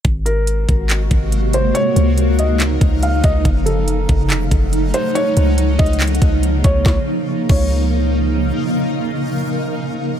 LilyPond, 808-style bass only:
\new Staff \with { instrumentName = "808-style bass" } { \clef bass \time 4/4 \key des \major \tempo 4 = 141 aes,,4. aes,,4 aes,,4. | r8 des,2 des,4 des,8 | ges,,4. ges,,8 f,,8 ges,,4 r8 | r8 des,4 des,4 des,4 des,8 |
des,8 r4 des,2~ des,8 | r1 | }